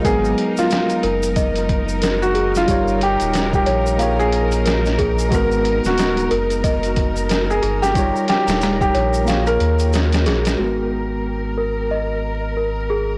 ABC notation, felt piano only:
X:1
M:4/4
L:1/16
Q:"Swing 16ths" 1/4=91
K:G#dor
V:1 name="Felt piano"
G3 E3 z6 z F2 E- | E2 =G3 G4 ^G4 z3 | A3 F3 z6 z G2 =G- | =G2 G3 G4 A4 z3 |
z16 |]